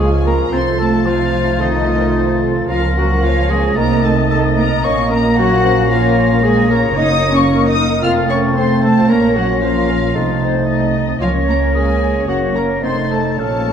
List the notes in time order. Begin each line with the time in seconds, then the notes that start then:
Already playing: C#2 F3 G#3 F4 C#6
0.00 F4 G#4 G#5
0.11 C#4 G#4
0.25 A#3 F4 A#4 A#5
0.38 C#4 G#4
0.51 C2 A3 C4 F4 A4 C5 C6 A6
0.66 A3 D#4
0.78 A3 C4 F4 A4 A5
0.93 A3 D#4
1.05 F3 C4 F4 C5 F5
1.18 A3 D#4
1.33 C4 F4
1.46 A3 D#4
1.59 D#3 C4 D#4 F4 A4 D#5
1.74 A3 D#4
1.88 C4 F4 A#4
2.02 A3 D#4
2.15 C4 F4 C5
2.29 A3 D#4
2.41 C4 F4 A4
2.56 A3 D#4
2.67 C#2 F3 A#3 C#4 F4 A#4 F5 A#6
2.82 A#3 C#4
2.95 F#3 C#4 F4 F#4 F#5
3.09 A#3 C#4
3.23 F3 C#4 F4 C#5 F5
3.37 A#3 C#4
3.48 G#3 C#4 F4 G#4 G#5
3.65 A#3 C#4
3.76 C2 D#3 A3 A#3 C4 D#4 A#4 D#5 A#5 A6
3.92 A3 C4
4.03 A3 C4 D#4 A4 A5
4.17 A3 C4
4.30 A3 C4 D#4 A4 A5
4.44 A3 C4
4.56 A#3 C4 D#4 A#4 A#5
4.72 A3 C4
4.83 A#1 A#3 C#4 C#5 C#6 A#6
5.00 A#3 F4
5.10 A#3 C#4 A#4 A#5
5.24 A#3 F4
5.36 F#3 C#4 F#4 C#5 F#5
5.51 A#3 F4
5.63 C#4 C5
5.75 A#3 F4
5.89 F3 C#4 F4 C#5 F5
6.03 A#3 F4
6.17 C#4
6.31 A#3 F4
6.43 G#3 C#4 G#4 C#5 G#5
6.57 A#3 F4
6.70 A#3 C#4 A#4 A#5
6.84 A#3 F4
6.97 F#1 A#3 D#4 D#5 D#6
7.11 A#3 D#4
7.23 A#3 D#4
7.32 C#4 C#5 C#6
7.39 A#3 D#4
7.50 A#3 D#4 A#4
7.63 A#3 D#4 D#5
7.67 D#4 D#5 D#6
7.77 A#3 D#4
7.92 A#3 D#4
8.02 F1 A3 C4 F4 F5 F6 A6
8.17 A3 F4
8.29 C4 C#4 C#5 C#6
8.43 A3 F4
8.55 C4 C5 C6
8.70 A3 F4
8.82 A3 C4 A4 A5
8.98 A3 F4
9.08 A#1 A#3 C#4 A#4 C#5 A#5 A#6
9.23 A#3 F4
9.34 F#3 C#4 F#4 F#5
9.49 A#3 F4
9.61 F3 C#4 F4 C5 F5
9.75 A#3 F4
9.87 C#4 A#4
10.02 A#3 F4
10.13 C2 A3 C4 D#4 A4 A6
10.29 A3 C4
10.41 C4 D#4 C5
10.55 A3 C4
10.68 C4 D#4 D#5
10.83 A3 C4
10.95 C4 D#4
11.10 A3 C4
11.20 C#2 F3 A#3 C#4 F4 C#5 F5 A#6
11.47 A#3 A#4 A#5
11.74 G#3 G#4 A#4 G#5
12.01 C#5
12.27 F#1 F#3 A#3 C#4 F#4 F#5 A#6
12.55 A#3 A#4 A#5
12.82 F1 A3 C4 D#4 C5 C6 A6
13.10 A3 A4 A5
13.37 A#1 F3 A3 A#3 C#4 A4 C#5 A5 F6